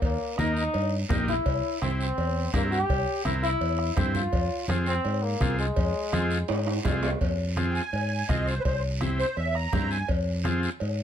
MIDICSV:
0, 0, Header, 1, 7, 480
1, 0, Start_track
1, 0, Key_signature, -4, "minor"
1, 0, Tempo, 359712
1, 29, Time_signature, 4, 2, 24, 8
1, 9626, Key_signature, -4, "minor"
1, 14718, End_track
2, 0, Start_track
2, 0, Title_t, "Accordion"
2, 0, Program_c, 0, 21
2, 10281, Note_on_c, 0, 79, 56
2, 10317, Note_off_c, 0, 79, 0
2, 10343, Note_on_c, 0, 80, 87
2, 11044, Note_off_c, 0, 80, 0
2, 11054, Note_on_c, 0, 75, 83
2, 11293, Note_off_c, 0, 75, 0
2, 11297, Note_on_c, 0, 72, 81
2, 11474, Note_on_c, 0, 71, 58
2, 11512, Note_off_c, 0, 71, 0
2, 11515, Note_off_c, 0, 72, 0
2, 11535, Note_on_c, 0, 72, 88
2, 11774, Note_off_c, 0, 72, 0
2, 12260, Note_on_c, 0, 72, 96
2, 12497, Note_off_c, 0, 72, 0
2, 12508, Note_on_c, 0, 76, 88
2, 12741, Note_off_c, 0, 76, 0
2, 12743, Note_on_c, 0, 82, 88
2, 13211, Note_off_c, 0, 82, 0
2, 13216, Note_on_c, 0, 80, 89
2, 13455, Note_off_c, 0, 80, 0
2, 14718, End_track
3, 0, Start_track
3, 0, Title_t, "Transistor combo organ"
3, 0, Program_c, 1, 18
3, 515, Note_on_c, 1, 58, 68
3, 522, Note_on_c, 1, 63, 56
3, 529, Note_on_c, 1, 70, 74
3, 847, Note_off_c, 1, 58, 0
3, 851, Note_off_c, 1, 63, 0
3, 855, Note_off_c, 1, 70, 0
3, 1456, Note_on_c, 1, 58, 90
3, 1463, Note_on_c, 1, 63, 73
3, 1474, Note_on_c, 1, 67, 102
3, 1797, Note_off_c, 1, 58, 0
3, 1801, Note_off_c, 1, 63, 0
3, 1807, Note_off_c, 1, 67, 0
3, 2424, Note_on_c, 1, 60, 69
3, 2428, Note_on_c, 1, 64, 62
3, 2434, Note_on_c, 1, 67, 71
3, 2761, Note_off_c, 1, 60, 0
3, 2763, Note_off_c, 1, 64, 0
3, 2766, Note_off_c, 1, 67, 0
3, 3379, Note_on_c, 1, 60, 76
3, 3383, Note_on_c, 1, 64, 71
3, 3386, Note_on_c, 1, 70, 83
3, 3718, Note_off_c, 1, 60, 0
3, 3720, Note_off_c, 1, 64, 0
3, 3722, Note_off_c, 1, 70, 0
3, 4332, Note_on_c, 1, 60, 68
3, 4337, Note_on_c, 1, 64, 61
3, 4343, Note_on_c, 1, 70, 72
3, 4675, Note_off_c, 1, 60, 0
3, 4677, Note_off_c, 1, 64, 0
3, 4681, Note_off_c, 1, 70, 0
3, 5286, Note_on_c, 1, 60, 70
3, 5294, Note_on_c, 1, 64, 69
3, 5302, Note_on_c, 1, 67, 87
3, 5632, Note_off_c, 1, 60, 0
3, 5635, Note_off_c, 1, 64, 0
3, 5640, Note_off_c, 1, 67, 0
3, 6259, Note_on_c, 1, 60, 70
3, 6263, Note_on_c, 1, 68, 74
3, 6264, Note_on_c, 1, 65, 57
3, 6598, Note_off_c, 1, 60, 0
3, 6600, Note_off_c, 1, 68, 0
3, 6601, Note_off_c, 1, 65, 0
3, 7217, Note_on_c, 1, 60, 74
3, 7221, Note_on_c, 1, 65, 72
3, 7227, Note_on_c, 1, 68, 83
3, 7557, Note_off_c, 1, 60, 0
3, 7559, Note_off_c, 1, 65, 0
3, 7562, Note_off_c, 1, 68, 0
3, 8174, Note_on_c, 1, 60, 83
3, 8181, Note_on_c, 1, 65, 76
3, 8184, Note_on_c, 1, 68, 93
3, 8516, Note_off_c, 1, 60, 0
3, 8520, Note_off_c, 1, 65, 0
3, 8521, Note_off_c, 1, 68, 0
3, 9139, Note_on_c, 1, 60, 82
3, 9144, Note_on_c, 1, 68, 92
3, 9145, Note_on_c, 1, 65, 76
3, 9479, Note_off_c, 1, 60, 0
3, 9481, Note_off_c, 1, 68, 0
3, 9482, Note_off_c, 1, 65, 0
3, 10092, Note_on_c, 1, 60, 74
3, 10101, Note_on_c, 1, 65, 72
3, 10104, Note_on_c, 1, 68, 86
3, 10435, Note_off_c, 1, 60, 0
3, 10440, Note_off_c, 1, 65, 0
3, 10442, Note_off_c, 1, 68, 0
3, 11060, Note_on_c, 1, 60, 71
3, 11065, Note_on_c, 1, 65, 69
3, 11073, Note_on_c, 1, 68, 77
3, 11400, Note_off_c, 1, 60, 0
3, 11402, Note_off_c, 1, 65, 0
3, 11407, Note_off_c, 1, 68, 0
3, 12017, Note_on_c, 1, 60, 71
3, 12019, Note_on_c, 1, 64, 78
3, 12033, Note_on_c, 1, 67, 86
3, 12359, Note_off_c, 1, 60, 0
3, 12360, Note_off_c, 1, 64, 0
3, 12367, Note_off_c, 1, 67, 0
3, 12976, Note_on_c, 1, 60, 72
3, 12981, Note_on_c, 1, 64, 64
3, 12985, Note_on_c, 1, 67, 76
3, 13318, Note_off_c, 1, 60, 0
3, 13321, Note_off_c, 1, 64, 0
3, 13323, Note_off_c, 1, 67, 0
3, 13928, Note_on_c, 1, 60, 87
3, 13932, Note_on_c, 1, 65, 80
3, 13938, Note_on_c, 1, 68, 94
3, 14274, Note_off_c, 1, 60, 0
3, 14276, Note_off_c, 1, 65, 0
3, 14279, Note_off_c, 1, 68, 0
3, 14718, End_track
4, 0, Start_track
4, 0, Title_t, "Trombone"
4, 0, Program_c, 2, 57
4, 41, Note_on_c, 2, 58, 91
4, 515, Note_on_c, 2, 63, 91
4, 535, Note_off_c, 2, 58, 0
4, 751, Note_off_c, 2, 63, 0
4, 759, Note_on_c, 2, 63, 105
4, 1311, Note_off_c, 2, 63, 0
4, 1721, Note_on_c, 2, 64, 103
4, 2384, Note_off_c, 2, 64, 0
4, 2422, Note_on_c, 2, 60, 91
4, 2531, Note_off_c, 2, 60, 0
4, 2667, Note_on_c, 2, 60, 103
4, 3336, Note_off_c, 2, 60, 0
4, 3389, Note_on_c, 2, 58, 84
4, 3496, Note_off_c, 2, 58, 0
4, 3623, Note_on_c, 2, 67, 115
4, 4294, Note_off_c, 2, 67, 0
4, 4346, Note_on_c, 2, 64, 92
4, 4454, Note_off_c, 2, 64, 0
4, 4570, Note_on_c, 2, 64, 112
4, 5247, Note_off_c, 2, 64, 0
4, 5292, Note_on_c, 2, 60, 89
4, 5521, Note_off_c, 2, 60, 0
4, 5530, Note_on_c, 2, 65, 100
4, 6207, Note_off_c, 2, 65, 0
4, 6255, Note_on_c, 2, 60, 84
4, 6365, Note_off_c, 2, 60, 0
4, 6498, Note_on_c, 2, 60, 107
4, 6969, Note_on_c, 2, 58, 97
4, 6989, Note_off_c, 2, 60, 0
4, 7457, Note_off_c, 2, 58, 0
4, 7465, Note_on_c, 2, 56, 94
4, 9092, Note_off_c, 2, 56, 0
4, 14718, End_track
5, 0, Start_track
5, 0, Title_t, "Fingered electric bass"
5, 0, Program_c, 3, 33
5, 25, Note_on_c, 3, 39, 95
5, 219, Note_off_c, 3, 39, 0
5, 515, Note_on_c, 3, 39, 79
5, 896, Note_off_c, 3, 39, 0
5, 997, Note_on_c, 3, 43, 86
5, 1377, Note_off_c, 3, 43, 0
5, 1468, Note_on_c, 3, 34, 81
5, 1852, Note_off_c, 3, 34, 0
5, 1948, Note_on_c, 3, 36, 102
5, 2140, Note_off_c, 3, 36, 0
5, 2429, Note_on_c, 3, 36, 81
5, 2812, Note_off_c, 3, 36, 0
5, 2907, Note_on_c, 3, 40, 90
5, 3291, Note_off_c, 3, 40, 0
5, 3389, Note_on_c, 3, 43, 87
5, 3772, Note_off_c, 3, 43, 0
5, 3864, Note_on_c, 3, 36, 96
5, 4057, Note_off_c, 3, 36, 0
5, 4342, Note_on_c, 3, 36, 93
5, 4727, Note_off_c, 3, 36, 0
5, 4816, Note_on_c, 3, 40, 86
5, 5204, Note_off_c, 3, 40, 0
5, 5301, Note_on_c, 3, 43, 90
5, 5687, Note_off_c, 3, 43, 0
5, 5777, Note_on_c, 3, 41, 94
5, 5972, Note_off_c, 3, 41, 0
5, 6257, Note_on_c, 3, 41, 94
5, 6644, Note_off_c, 3, 41, 0
5, 6743, Note_on_c, 3, 44, 90
5, 7128, Note_off_c, 3, 44, 0
5, 7219, Note_on_c, 3, 36, 88
5, 7605, Note_off_c, 3, 36, 0
5, 7699, Note_on_c, 3, 41, 100
5, 7894, Note_off_c, 3, 41, 0
5, 8182, Note_on_c, 3, 41, 96
5, 8568, Note_off_c, 3, 41, 0
5, 8668, Note_on_c, 3, 44, 90
5, 9051, Note_off_c, 3, 44, 0
5, 9144, Note_on_c, 3, 36, 89
5, 9529, Note_off_c, 3, 36, 0
5, 9622, Note_on_c, 3, 41, 101
5, 10393, Note_off_c, 3, 41, 0
5, 10582, Note_on_c, 3, 44, 80
5, 10968, Note_off_c, 3, 44, 0
5, 11068, Note_on_c, 3, 36, 95
5, 11452, Note_off_c, 3, 36, 0
5, 11545, Note_on_c, 3, 36, 107
5, 12314, Note_off_c, 3, 36, 0
5, 12505, Note_on_c, 3, 40, 79
5, 12890, Note_off_c, 3, 40, 0
5, 12986, Note_on_c, 3, 43, 99
5, 13371, Note_off_c, 3, 43, 0
5, 13465, Note_on_c, 3, 41, 110
5, 14234, Note_off_c, 3, 41, 0
5, 14429, Note_on_c, 3, 44, 84
5, 14718, Note_off_c, 3, 44, 0
5, 14718, End_track
6, 0, Start_track
6, 0, Title_t, "Two-headed folk drums"
6, 28, Note_on_c, 9, 36, 76
6, 161, Note_off_c, 9, 36, 0
6, 506, Note_on_c, 9, 37, 80
6, 639, Note_off_c, 9, 37, 0
6, 1469, Note_on_c, 9, 36, 77
6, 1469, Note_on_c, 9, 37, 83
6, 1602, Note_off_c, 9, 36, 0
6, 1602, Note_off_c, 9, 37, 0
6, 1946, Note_on_c, 9, 36, 76
6, 2080, Note_off_c, 9, 36, 0
6, 2427, Note_on_c, 9, 37, 80
6, 2560, Note_off_c, 9, 37, 0
6, 3386, Note_on_c, 9, 36, 83
6, 3388, Note_on_c, 9, 37, 85
6, 3519, Note_off_c, 9, 36, 0
6, 3521, Note_off_c, 9, 37, 0
6, 3863, Note_on_c, 9, 36, 85
6, 3997, Note_off_c, 9, 36, 0
6, 4338, Note_on_c, 9, 37, 84
6, 4472, Note_off_c, 9, 37, 0
6, 5053, Note_on_c, 9, 37, 69
6, 5187, Note_off_c, 9, 37, 0
6, 5298, Note_on_c, 9, 36, 80
6, 5298, Note_on_c, 9, 37, 83
6, 5432, Note_off_c, 9, 36, 0
6, 5432, Note_off_c, 9, 37, 0
6, 5778, Note_on_c, 9, 36, 82
6, 5912, Note_off_c, 9, 36, 0
6, 6264, Note_on_c, 9, 37, 87
6, 6398, Note_off_c, 9, 37, 0
6, 7218, Note_on_c, 9, 36, 81
6, 7220, Note_on_c, 9, 37, 84
6, 7351, Note_off_c, 9, 36, 0
6, 7353, Note_off_c, 9, 37, 0
6, 7698, Note_on_c, 9, 36, 76
6, 7831, Note_off_c, 9, 36, 0
6, 8179, Note_on_c, 9, 37, 86
6, 8313, Note_off_c, 9, 37, 0
6, 8908, Note_on_c, 9, 37, 74
6, 9041, Note_off_c, 9, 37, 0
6, 9144, Note_on_c, 9, 36, 82
6, 9146, Note_on_c, 9, 37, 83
6, 9277, Note_off_c, 9, 36, 0
6, 9279, Note_off_c, 9, 37, 0
6, 9623, Note_on_c, 9, 36, 82
6, 9757, Note_off_c, 9, 36, 0
6, 10103, Note_on_c, 9, 37, 83
6, 10236, Note_off_c, 9, 37, 0
6, 11064, Note_on_c, 9, 36, 89
6, 11064, Note_on_c, 9, 37, 79
6, 11198, Note_off_c, 9, 36, 0
6, 11198, Note_off_c, 9, 37, 0
6, 11546, Note_on_c, 9, 36, 77
6, 11679, Note_off_c, 9, 36, 0
6, 12020, Note_on_c, 9, 37, 85
6, 12154, Note_off_c, 9, 37, 0
6, 12745, Note_on_c, 9, 37, 72
6, 12878, Note_off_c, 9, 37, 0
6, 12984, Note_on_c, 9, 36, 81
6, 12985, Note_on_c, 9, 37, 90
6, 13118, Note_off_c, 9, 36, 0
6, 13118, Note_off_c, 9, 37, 0
6, 13465, Note_on_c, 9, 36, 78
6, 13598, Note_off_c, 9, 36, 0
6, 13947, Note_on_c, 9, 37, 80
6, 14080, Note_off_c, 9, 37, 0
6, 14718, End_track
7, 0, Start_track
7, 0, Title_t, "Drums"
7, 28, Note_on_c, 9, 56, 100
7, 34, Note_on_c, 9, 74, 63
7, 41, Note_on_c, 9, 63, 36
7, 162, Note_off_c, 9, 56, 0
7, 167, Note_off_c, 9, 74, 0
7, 175, Note_off_c, 9, 63, 0
7, 517, Note_on_c, 9, 73, 68
7, 518, Note_on_c, 9, 63, 85
7, 651, Note_off_c, 9, 63, 0
7, 651, Note_off_c, 9, 73, 0
7, 755, Note_on_c, 9, 73, 74
7, 888, Note_off_c, 9, 73, 0
7, 985, Note_on_c, 9, 56, 85
7, 991, Note_on_c, 9, 74, 65
7, 1000, Note_on_c, 9, 63, 33
7, 1119, Note_off_c, 9, 56, 0
7, 1125, Note_off_c, 9, 74, 0
7, 1133, Note_off_c, 9, 63, 0
7, 1469, Note_on_c, 9, 66, 59
7, 1474, Note_on_c, 9, 63, 89
7, 1474, Note_on_c, 9, 64, 83
7, 1474, Note_on_c, 9, 73, 69
7, 1603, Note_off_c, 9, 66, 0
7, 1607, Note_off_c, 9, 63, 0
7, 1607, Note_off_c, 9, 64, 0
7, 1608, Note_off_c, 9, 73, 0
7, 1712, Note_on_c, 9, 64, 68
7, 1712, Note_on_c, 9, 73, 72
7, 1845, Note_off_c, 9, 73, 0
7, 1846, Note_off_c, 9, 64, 0
7, 1946, Note_on_c, 9, 56, 98
7, 1947, Note_on_c, 9, 74, 64
7, 1951, Note_on_c, 9, 63, 36
7, 2079, Note_off_c, 9, 56, 0
7, 2080, Note_off_c, 9, 74, 0
7, 2085, Note_off_c, 9, 63, 0
7, 2435, Note_on_c, 9, 63, 79
7, 2435, Note_on_c, 9, 73, 67
7, 2568, Note_off_c, 9, 63, 0
7, 2568, Note_off_c, 9, 73, 0
7, 2677, Note_on_c, 9, 73, 78
7, 2810, Note_off_c, 9, 73, 0
7, 2906, Note_on_c, 9, 74, 71
7, 2909, Note_on_c, 9, 56, 86
7, 2913, Note_on_c, 9, 63, 32
7, 3040, Note_off_c, 9, 74, 0
7, 3042, Note_off_c, 9, 56, 0
7, 3047, Note_off_c, 9, 63, 0
7, 3386, Note_on_c, 9, 63, 77
7, 3389, Note_on_c, 9, 73, 73
7, 3391, Note_on_c, 9, 66, 66
7, 3519, Note_off_c, 9, 63, 0
7, 3522, Note_off_c, 9, 73, 0
7, 3524, Note_off_c, 9, 66, 0
7, 3634, Note_on_c, 9, 73, 68
7, 3768, Note_off_c, 9, 73, 0
7, 3863, Note_on_c, 9, 63, 36
7, 3870, Note_on_c, 9, 56, 100
7, 3870, Note_on_c, 9, 74, 70
7, 3997, Note_off_c, 9, 63, 0
7, 4003, Note_off_c, 9, 56, 0
7, 4004, Note_off_c, 9, 74, 0
7, 4340, Note_on_c, 9, 63, 84
7, 4348, Note_on_c, 9, 73, 76
7, 4473, Note_off_c, 9, 63, 0
7, 4481, Note_off_c, 9, 73, 0
7, 4584, Note_on_c, 9, 73, 74
7, 4717, Note_off_c, 9, 73, 0
7, 4818, Note_on_c, 9, 56, 88
7, 4821, Note_on_c, 9, 63, 33
7, 4825, Note_on_c, 9, 74, 68
7, 4952, Note_off_c, 9, 56, 0
7, 4955, Note_off_c, 9, 63, 0
7, 4958, Note_off_c, 9, 74, 0
7, 5302, Note_on_c, 9, 63, 84
7, 5302, Note_on_c, 9, 64, 81
7, 5302, Note_on_c, 9, 73, 73
7, 5435, Note_off_c, 9, 63, 0
7, 5435, Note_off_c, 9, 64, 0
7, 5435, Note_off_c, 9, 73, 0
7, 5533, Note_on_c, 9, 64, 65
7, 5537, Note_on_c, 9, 73, 71
7, 5667, Note_off_c, 9, 64, 0
7, 5670, Note_off_c, 9, 73, 0
7, 5772, Note_on_c, 9, 56, 96
7, 5777, Note_on_c, 9, 63, 37
7, 5780, Note_on_c, 9, 74, 68
7, 5906, Note_off_c, 9, 56, 0
7, 5910, Note_off_c, 9, 63, 0
7, 5914, Note_off_c, 9, 74, 0
7, 6246, Note_on_c, 9, 63, 84
7, 6253, Note_on_c, 9, 73, 68
7, 6379, Note_off_c, 9, 63, 0
7, 6386, Note_off_c, 9, 73, 0
7, 6491, Note_on_c, 9, 73, 75
7, 6625, Note_off_c, 9, 73, 0
7, 6733, Note_on_c, 9, 74, 67
7, 6735, Note_on_c, 9, 56, 89
7, 6736, Note_on_c, 9, 63, 33
7, 6866, Note_off_c, 9, 74, 0
7, 6869, Note_off_c, 9, 56, 0
7, 6869, Note_off_c, 9, 63, 0
7, 7214, Note_on_c, 9, 63, 82
7, 7216, Note_on_c, 9, 73, 71
7, 7347, Note_off_c, 9, 63, 0
7, 7349, Note_off_c, 9, 73, 0
7, 7456, Note_on_c, 9, 73, 68
7, 7589, Note_off_c, 9, 73, 0
7, 7692, Note_on_c, 9, 56, 100
7, 7695, Note_on_c, 9, 74, 67
7, 7701, Note_on_c, 9, 63, 35
7, 7825, Note_off_c, 9, 56, 0
7, 7829, Note_off_c, 9, 74, 0
7, 7835, Note_off_c, 9, 63, 0
7, 8176, Note_on_c, 9, 73, 72
7, 8181, Note_on_c, 9, 63, 81
7, 8309, Note_off_c, 9, 73, 0
7, 8315, Note_off_c, 9, 63, 0
7, 8416, Note_on_c, 9, 73, 77
7, 8550, Note_off_c, 9, 73, 0
7, 8651, Note_on_c, 9, 74, 72
7, 8657, Note_on_c, 9, 56, 86
7, 8657, Note_on_c, 9, 65, 104
7, 8669, Note_on_c, 9, 63, 34
7, 8784, Note_off_c, 9, 74, 0
7, 8790, Note_off_c, 9, 56, 0
7, 8790, Note_off_c, 9, 65, 0
7, 8803, Note_off_c, 9, 63, 0
7, 8900, Note_on_c, 9, 65, 91
7, 9033, Note_off_c, 9, 65, 0
7, 9136, Note_on_c, 9, 66, 90
7, 9137, Note_on_c, 9, 73, 75
7, 9145, Note_on_c, 9, 63, 86
7, 9145, Note_on_c, 9, 64, 80
7, 9270, Note_off_c, 9, 66, 0
7, 9270, Note_off_c, 9, 73, 0
7, 9279, Note_off_c, 9, 63, 0
7, 9279, Note_off_c, 9, 64, 0
7, 9376, Note_on_c, 9, 73, 66
7, 9379, Note_on_c, 9, 66, 101
7, 9509, Note_off_c, 9, 73, 0
7, 9512, Note_off_c, 9, 66, 0
7, 9620, Note_on_c, 9, 74, 60
7, 9626, Note_on_c, 9, 56, 98
7, 9627, Note_on_c, 9, 63, 36
7, 9754, Note_off_c, 9, 74, 0
7, 9760, Note_off_c, 9, 56, 0
7, 9761, Note_off_c, 9, 63, 0
7, 10100, Note_on_c, 9, 63, 76
7, 10104, Note_on_c, 9, 73, 65
7, 10234, Note_off_c, 9, 63, 0
7, 10238, Note_off_c, 9, 73, 0
7, 10346, Note_on_c, 9, 73, 71
7, 10479, Note_off_c, 9, 73, 0
7, 10581, Note_on_c, 9, 56, 86
7, 10587, Note_on_c, 9, 63, 36
7, 10590, Note_on_c, 9, 74, 70
7, 10715, Note_off_c, 9, 56, 0
7, 10721, Note_off_c, 9, 63, 0
7, 10724, Note_off_c, 9, 74, 0
7, 11064, Note_on_c, 9, 73, 75
7, 11073, Note_on_c, 9, 63, 81
7, 11198, Note_off_c, 9, 73, 0
7, 11206, Note_off_c, 9, 63, 0
7, 11308, Note_on_c, 9, 73, 66
7, 11441, Note_off_c, 9, 73, 0
7, 11544, Note_on_c, 9, 74, 67
7, 11546, Note_on_c, 9, 56, 108
7, 11555, Note_on_c, 9, 63, 34
7, 11678, Note_off_c, 9, 74, 0
7, 11680, Note_off_c, 9, 56, 0
7, 11689, Note_off_c, 9, 63, 0
7, 12028, Note_on_c, 9, 73, 73
7, 12029, Note_on_c, 9, 63, 81
7, 12161, Note_off_c, 9, 73, 0
7, 12162, Note_off_c, 9, 63, 0
7, 12272, Note_on_c, 9, 73, 73
7, 12405, Note_off_c, 9, 73, 0
7, 12501, Note_on_c, 9, 63, 33
7, 12503, Note_on_c, 9, 56, 87
7, 12507, Note_on_c, 9, 74, 63
7, 12635, Note_off_c, 9, 63, 0
7, 12636, Note_off_c, 9, 56, 0
7, 12641, Note_off_c, 9, 74, 0
7, 12979, Note_on_c, 9, 66, 62
7, 12985, Note_on_c, 9, 63, 83
7, 12985, Note_on_c, 9, 64, 87
7, 12992, Note_on_c, 9, 73, 70
7, 13112, Note_off_c, 9, 66, 0
7, 13118, Note_off_c, 9, 63, 0
7, 13118, Note_off_c, 9, 64, 0
7, 13125, Note_off_c, 9, 73, 0
7, 13222, Note_on_c, 9, 73, 72
7, 13355, Note_off_c, 9, 73, 0
7, 13458, Note_on_c, 9, 56, 108
7, 13463, Note_on_c, 9, 63, 31
7, 13467, Note_on_c, 9, 74, 66
7, 13591, Note_off_c, 9, 56, 0
7, 13597, Note_off_c, 9, 63, 0
7, 13600, Note_off_c, 9, 74, 0
7, 13942, Note_on_c, 9, 63, 77
7, 13943, Note_on_c, 9, 73, 67
7, 14075, Note_off_c, 9, 63, 0
7, 14077, Note_off_c, 9, 73, 0
7, 14188, Note_on_c, 9, 73, 76
7, 14321, Note_off_c, 9, 73, 0
7, 14415, Note_on_c, 9, 56, 86
7, 14428, Note_on_c, 9, 63, 35
7, 14428, Note_on_c, 9, 74, 64
7, 14548, Note_off_c, 9, 56, 0
7, 14561, Note_off_c, 9, 63, 0
7, 14562, Note_off_c, 9, 74, 0
7, 14718, End_track
0, 0, End_of_file